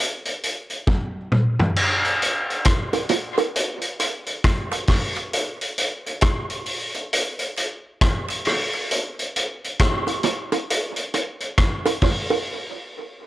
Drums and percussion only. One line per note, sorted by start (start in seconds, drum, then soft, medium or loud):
0.25 closed hi-hat soft
0.43 closed hi-hat medium
0.70 closed hi-hat soft
0.87 kick loud
0.87 high tom soft
1.32 mid tom medium
1.60 floor tom medium
1.76 crash medium
2.05 closed hi-hat soft
2.22 closed hi-hat medium
2.50 closed hi-hat soft
2.65 kick loud
2.65 cross-stick loud
2.65 closed hi-hat medium
2.93 closed hi-hat medium
2.93 high bongo medium
3.09 closed hi-hat medium
3.09 low bongo medium
3.38 closed hi-hat soft
3.38 high bongo medium
3.56 closed hi-hat loud
3.81 closed hi-hat medium
4.00 closed hi-hat medium
4.00 high bongo medium
4.26 closed hi-hat soft
4.44 kick loud
4.44 cross-stick loud
4.44 closed hi-hat medium
4.72 closed hi-hat medium
4.72 high bongo medium
4.87 kick medium
4.87 cross-stick medium
4.87 open hi-hat medium
4.87 low bongo medium
5.15 closed hi-hat soft
5.15 high bongo medium
5.33 closed hi-hat medium
5.61 closed hi-hat soft
5.78 closed hi-hat medium
6.06 closed hi-hat soft
6.21 kick loud
6.21 cross-stick loud
6.21 closed hi-hat medium
6.50 closed hi-hat medium
6.50 high bongo medium
6.66 open hi-hat medium
6.66 low bongo medium
6.94 closed hi-hat soft
6.94 high bongo medium
7.13 closed hi-hat loud
7.39 closed hi-hat medium
7.57 closed hi-hat medium
7.57 high bongo medium
8.01 kick loud
8.01 cross-stick loud
8.01 closed hi-hat medium
8.29 closed hi-hat medium
8.29 high bongo medium
8.45 cross-stick medium
8.45 open hi-hat medium
8.45 low bongo medium
8.73 high bongo medium
8.91 closed hi-hat medium
9.19 closed hi-hat soft
9.36 closed hi-hat medium
9.64 closed hi-hat soft
9.79 kick loud
9.79 cross-stick loud
9.79 closed hi-hat medium
10.07 closed hi-hat medium
10.07 high bongo soft
10.23 closed hi-hat medium
10.23 low bongo medium
10.52 closed hi-hat soft
10.52 high bongo medium
10.70 closed hi-hat loud
10.96 closed hi-hat soft
11.14 closed hi-hat medium
11.14 high bongo soft
11.40 closed hi-hat soft
11.58 kick loud
11.58 cross-stick loud
11.58 closed hi-hat medium
11.86 closed hi-hat medium
11.86 high bongo medium
12.02 kick medium
12.02 cross-stick medium
12.02 open hi-hat medium
12.02 low bongo medium
12.30 high bongo medium